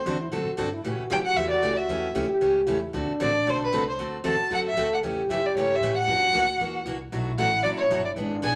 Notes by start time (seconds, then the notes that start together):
Already playing: C5
0.06 E2 D3 A3 C4 D4 F#4 A4
0.21 E4
0.32 F#2 D3 A3 C4 F#4 A4
0.47 muted upright bass stroke
0.57 G2 D3 A3 C4 D4 F#4 A4
0.73 E4
0.83 A2 C#3 E3 A3 C#4 F#4 G4
0.99 muted upright bass stroke
1.10 F#2 C#3 E3 A3 C#4 G4 G5
1.26 F#5
1.36 E2 C#3 E3 A3 C#4 G4 E5
1.51 D5
1.62 C#2 C#3 E3 A3 C#4 G4
1.76 E5
1.88 E2 C#3 E3 A3 C#4 G4
2.15 D2 C#3 E3 A3 C#4 G4
2.29 G4, muted upright bass stroke
2.41 C#2 C#3 E3 A3 C#4 G4
2.67 E2 C#3 E3 A3 C#4 E4 G4
2.88 E4
2.93 D2 D3 A3 C4 D4 F#4 A4
3.20 A1 D3 A3 C4 F#4 A4 D5
3.46 B1 D3 A3 C4 F#4 A4 C5
3.64 B4
3.72 C2 D3 A3 C4 F#4 A4
3.90 C5
3.98 D2 D3 A3 C4 F#4 A4
4.24 E2 D3 A3 C4 F#4 A4 A5
4.40 muted upright bass stroke
4.50 F#2 D3 A3 C4 F#4 A4 F#5
4.68 E5
4.76 D2 D3 A3 C4 F#4 A4
4.94 F#5
5.03 E2 C#3 E3 A3 C#4 G4
5.29 F#2 C#3 E3 A3 C#4 G4 E5
5.46 D5
5.54 G2 C#3 E3 A3 C#4 G4 C#5
5.75 E5
5.80 A2 C#3 E3 A3 C#4 G4
5.98 F#5
6.07 F#2 E3 A#3 D4 F#4
6.33 D2 E3 A#3 D4 F#4
6.60 E2 E3 A#3 D4 F#4
6.85 C2 E3 A#3 D4 F#4
7.12 B1 B2 F#3 A3 D4 E4 F#4
7.38 A1 B2 F#3 A3 D4 F#4 F#5
7.63 F#1 B2 F#3 A3 D4 F#4 D5
7.77 C#5
7.90 G1 B2 F#3 A3 D4 F#4
8.05 D5
8.16 G#1 E3 B3 D4 G#4
8.42 B1 E3 B3 D4 G#4 G#5